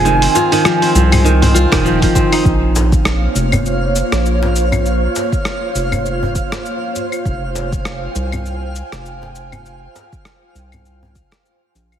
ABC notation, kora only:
X:1
M:4/4
L:1/16
Q:"Swing 16ths" 1/4=100
K:Bbdor
V:1 name="Kora" clef=bass
E, C F E, F, C F, A, E, C F E, F, F, C E | z16 | z16 | z16 |
z16 |]